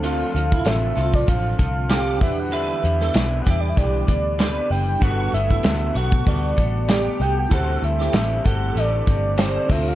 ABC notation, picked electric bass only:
X:1
M:4/4
L:1/8
Q:"Swing 16ths" 1/4=96
K:Dmix
V:1 name="Picked electric bass" clef=bass
D,, D,, A,,, C,, A,,, C,,2 E,,- | E,, E,, B,,, E,, B,,, D,,2 F,,, | G,,, G,,, D,, B,,, D,, A,,,2 C,, | D,, D,, A,,, G,,, A,,, G,,,2 D,, |]